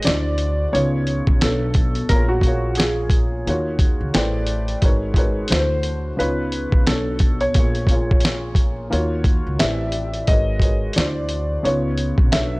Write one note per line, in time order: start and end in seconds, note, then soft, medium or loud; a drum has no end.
0.03 0.61 D3 medium
0.03 0.62 D4 medium
0.03 0.62 E4 medium
0.03 0.75 D5 medium
0.03 closed hi-hat medium
0.07 0.65 D2 loud
0.07 0.62 F#4 medium
0.07 0.63 C5 medium
0.07 snare loud
0.38 closed hi-hat medium
0.72 1.20 C#2 medium
0.72 1.29 C#3 medium
0.72 1.30 B3 medium
0.72 1.30 D#4 medium
0.72 1.31 F4 medium
0.72 1.43 C#5 medium
0.72 1.31 C#5 medium
0.72 closed hi-hat medium
1.07 closed hi-hat medium
1.27 1.40 A#1 medium
1.27 kick medium
1.41 2.01 B1 loud
1.41 1.98 B2 medium
1.41 1.99 B3 medium
1.41 1.99 D4 medium
1.41 2.12 A4 medium
1.41 1.99 A4 medium
1.41 2.00 C#5 medium
1.41 snare loud
1.41 closed hi-hat medium
1.74 kick medium
1.74 closed hi-hat medium
1.95 closed hi-hat soft
2.09 3.42 A#1 loud
2.09 2.37 A#2 medium
2.09 2.37 A#3 medium
2.09 2.38 F4 medium
2.09 2.29 A#4 medium
2.09 kick medium
2.09 closed hi-hat medium
2.14 2.38 G#4 medium
2.14 2.39 C#5 medium
2.29 2.79 F#4 medium
2.41 3.45 A#2 medium
2.41 3.45 A#3 medium
2.41 kick medium
2.41 closed hi-hat medium
2.46 3.46 G#4 medium
2.46 3.47 C#5 medium
2.46 3.46 F5 medium
2.75 4.44 G#4 medium
2.75 closed hi-hat medium
2.80 snare loud
3.10 kick medium
3.10 closed hi-hat medium
3.47 3.93 D#2 medium
3.47 4.03 D#3 medium
3.47 4.03 A#3 medium
3.47 4.04 F4 medium
3.47 4.04 F#4 medium
3.47 4.04 C#5 medium
3.47 closed hi-hat medium
3.79 kick medium
3.79 closed hi-hat medium
4.01 4.13 C#2 medium
4.14 4.74 A1 medium
4.14 4.71 A3 medium
4.14 4.71 E4 medium
4.14 4.72 B4 medium
4.14 4.72 C5 medium
4.14 4.72 D5 loud
4.14 4.71 G5 medium
4.14 snare loud
4.14 closed hi-hat medium
4.47 closed hi-hat medium
4.68 closed hi-hat soft
4.81 5.42 G#1 medium
4.81 5.08 G#3 medium
4.81 5.09 D#4 medium
4.81 5.09 F#4 medium
4.81 5.09 A#4 medium
4.81 5.10 B4 medium
4.81 5.10 C#5 loud
4.81 kick medium
4.81 closed hi-hat medium
5.14 5.50 G#3 medium
5.14 5.50 D#4 medium
5.14 5.51 F#4 medium
5.14 5.51 A#4 medium
5.14 kick medium
5.14 closed hi-hat medium
5.18 5.51 B4 medium
5.18 5.52 C#5 medium
5.48 6.10 D2 loud
5.48 6.07 D3 medium
5.48 6.07 A3 medium
5.48 6.08 E4 medium
5.48 6.15 C5 medium
5.48 closed hi-hat medium
5.52 6.08 F#4 medium
5.52 5.59 B4 medium
5.52 snare loud
5.60 6.12 C5 medium
5.83 closed hi-hat medium
6.17 6.66 C#2 medium
6.17 6.74 C#3 medium
6.17 6.75 B3 medium
6.17 6.75 D#4 medium
6.17 6.76 F4 medium
6.17 6.83 B4 medium
6.17 6.76 C#5 medium
6.17 closed hi-hat medium
6.52 closed hi-hat medium
6.72 6.85 A#1 medium
6.72 kick medium
6.87 7.47 B1 medium
6.87 7.44 B2 medium
6.87 7.44 B3 medium
6.87 7.44 D4 medium
6.87 7.37 A4 medium
6.87 7.45 A4 medium
6.87 snare loud
6.87 closed hi-hat medium
6.91 7.45 C#5 medium
7.19 kick medium
7.19 closed hi-hat medium
7.41 8.73 C#5 medium
7.41 closed hi-hat soft
7.54 8.88 A#1 loud
7.54 7.82 A#2 medium
7.54 7.82 A#3 medium
7.54 7.82 F4 medium
7.54 7.83 G#4 medium
7.54 kick medium
7.54 closed hi-hat medium
7.59 7.83 C#5 medium
7.75 closed hi-hat soft
7.87 8.90 A#2 medium
7.87 8.89 A#3 medium
7.87 kick medium
7.87 closed hi-hat medium
7.91 8.90 F4 medium
7.91 8.91 G#4 medium
7.91 8.92 C#5 medium
8.11 kick medium
8.20 closed hi-hat medium
8.25 snare loud
8.55 kick medium
8.55 closed hi-hat medium
8.90 9.39 D#2 loud
8.90 9.47 D#3 medium
8.90 9.47 A#3 medium
8.90 9.48 F4 medium
8.90 9.48 F#4 medium
8.90 9.49 C#5 loud
8.90 closed hi-hat medium
9.24 kick medium
9.24 closed hi-hat medium
9.47 9.59 C#2 medium
9.59 10.20 A1 medium
9.59 10.16 A2 medium
9.59 10.16 E3 medium
9.59 10.16 C4 medium
9.59 10.17 G4 medium
9.59 10.17 B4 medium
9.59 10.18 D5 medium
9.59 10.30 E5 medium
9.59 snare loud
9.59 closed hi-hat medium
9.92 closed hi-hat medium
10.13 closed hi-hat soft
10.27 10.87 G#1 loud
10.27 10.54 G#3 medium
10.27 10.55 F#4 medium
10.27 10.55 A#4 medium
10.27 10.56 B4 medium
10.27 10.92 D#5 medium
10.27 kick loud
10.27 closed hi-hat medium
10.31 10.56 C#5 medium
10.60 10.95 G#3 medium
10.60 10.95 F#4 medium
10.60 10.96 A#4 medium
10.60 10.96 B4 medium
10.60 kick medium
10.60 closed hi-hat medium
10.64 10.97 C#5 medium
10.93 11.52 D3 medium
10.93 11.53 D4 medium
10.93 11.53 E4 medium
10.93 11.66 D5 medium
10.93 closed hi-hat medium
10.97 11.56 D2 loud
10.97 11.54 F#4 medium
10.97 11.54 C5 medium
10.97 snare loud
11.29 closed hi-hat medium
11.63 12.11 C#2 medium
11.63 12.20 C#3 medium
11.63 12.20 B3 medium
11.63 12.21 D#4 medium
11.63 12.21 F4 medium
11.63 12.28 C#5 medium
11.63 12.22 C#5 medium
11.63 closed hi-hat medium
11.98 closed hi-hat medium
12.18 12.31 A#1 medium
12.18 kick medium
12.31 12.60 B1 medium
12.31 12.60 B2 medium
12.31 12.60 B3 medium
12.31 12.60 D4 medium
12.31 12.60 A4 medium
12.31 12.60 C#5 medium
12.31 12.60 E5 medium
12.31 snare loud
12.31 closed hi-hat medium